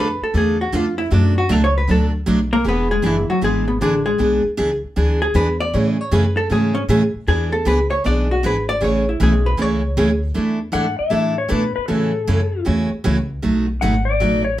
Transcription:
Already playing: F2
0.00 B4
0.22 A4, muted upright bass stroke
0.34 E2 D3 A3 D4 F4 G#4 A4
0.61 F#4
0.72 F2 D3 A3 D4 F4 A4
0.98 E4
1.10 F#2 B2 F#3 A3 D4 F#4
1.38 F#4
1.49 C#2 B2 F#3 A3 D4 F#4 A4
1.64 C#5
1.78 B4
1.88 D2 B2 F#3 A3 D4 F#4 A4
2.26 B1 B2 F#3 A3 D4 F#4
2.53 A#3 A#4
2.64 E1 E3 B3 D4 G#4 B4
2.68 B3
2.91 G#3 G#4
3.02 F#1 E3 B3 D4 G#4
3.06 E4
3.30 F#3 F#4, muted upright bass stroke
3.41 G#1 E3 G#3 B3 D4 G#4
3.67 B2 B3
3.81 A1 D3 E3 B3 D4 G#4
4.06 G#3 G#4
4.18 B1 E3 B3 D4 G#4
4.45 muted upright bass stroke
4.57 C#2 E3 B3 D4 G#4
4.84 muted upright bass stroke
4.96 D2 E3 B3 D4 G#4
5.22 G#4
5.34 E2 E3 B3 D4 G#4 B4
5.60 D5
5.73 A2 C#3 E3 A3 C#4 G#4 C#5
5.88 D5
6.01 C#5
6.11 F#2 C#3 E3 A3 C#4 G#4 B4
6.37 A4
6.50 G#2 C#3 E3 A3 C#4 G#4
6.75 C#4
6.88 A2 C#3 E3 A3 C#4 G#4
7.15 muted upright bass stroke
7.27 E2 E3 B3 D4 G#4
7.52 A4
7.65 C#2 E3 B3 D4 G#4 B4
7.90 C#5
8.04 B1 E3 B3 D4 G#4 D5
8.31 F#4
8.43 G#1 E3 B3 D4 G#4 B4
8.69 D5
8.81 A1 C#3 E3 A3 C#4 G#4 C#5
9.09 E4
9.20 B1 C#3 E3 A3 C#4 G#4
9.46 B4
9.57 C#2 C#3 E3 A3 C#4 G#4
9.62 C#5
9.97 D2 C#3 E3 A3 C#4 G#4
10.34 E2 E3 A3 D4 E4 A4
10.72 G#2 E3 A3 D4 E4 A4 F#5
10.99 E5, muted upright bass stroke
11.10 A2 E3 A3 D4 E4 A4
11.38 C#5
11.48 B2 E3 A3 D4 E4 A4 B4
11.76 B4, muted upright bass stroke
11.88 A2 C#3 E3 A3 C#4 F#4 A4
12.27 F#2 C#3 E3 A3 C#4 F#4
12.65 E2 C#3 E3 A3 C#4 F#4
12.93 muted upright bass stroke
13.04 C#2 C#3 E3 A3 C#4 F#4
13.42 B1 B2 F#3 A3 D#4 F#4
13.81 G#1 B2 F#3 A3 D#4 F#4 F#5
14.05 D5
14.20 A1 B2 F#3 A3 D#4 F#4
14.45 C#5

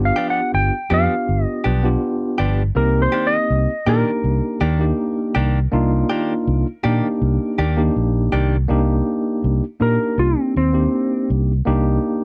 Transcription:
Already playing: B3 D4 F4 G4
0.05 F5
0.16 F3 B3 D4 G4
0.30 F#5
0.54 G1 G5
0.90 F2 F3 B3 D4 F4 G4 F5
1.29 G1
1.45 D#5
1.64 B1 F3 B3 D4 G4
1.83 B3 D4 F4 G4
2.38 G1 F3 B3 D4 G4
2.75 C2 A#3 C4 D#4 G4 A#4
3.02 C5
3.12 D#3 A#3 D4 G4
3.27 D#5
3.50 C2
3.86 A#2 D#3 A#3 D4 D#4 G4 A#4
4.24 C2
4.61 D#2 D#3 A#3 D4 G4
4.79 A#3 D4 D#4 G4
5.35 C2 D#3 A#3 D4 G4
5.72 C2 A#3 D4 D#4 F4
6.10 D#3 A#3 D4 G4
6.47 C2
6.83 A#2 D#3 A#3 D4 D#4 G4
7.22 C2
7.59 D#2 D#3 A#3 D4 G4
7.77 A#3 D4 D#4 G4
7.96 A#1
8.32 C2 D#3 A#3 D4 G4
8.68 C2 A#3 D4 D#4 G4
9.44 C2
9.80 A#2 A#3 D4 D#4 G4 A#4
10.18 C2 F4
10.39 C4
10.56 D#2 C4
10.72 A#3 D4 D#4 G4
11.30 C2
11.65 C2 A#3 D4 D#4 G4

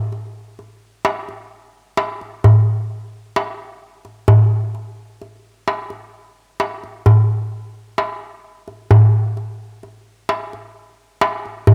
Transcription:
0.12 darbuka ka
0.59 darbuka ka
1.05 darbuka tek
1.29 darbuka ka
1.97 darbuka tek
2.21 darbuka ka
2.44 darbuka dum
3.36 darbuka tek
4.05 darbuka ka
4.28 darbuka dum
4.75 darbuka ka
5.21 darbuka ka
5.68 darbuka tek
5.90 darbuka ka
6.60 darbuka tek
6.84 darbuka ka
7.06 darbuka dum
7.98 darbuka tek
8.68 darbuka ka
8.91 darbuka dum
9.37 darbuka ka
9.83 darbuka ka
10.29 darbuka tek
10.53 darbuka ka
11.21 darbuka tek
11.45 darbuka ka
11.67 darbuka dum

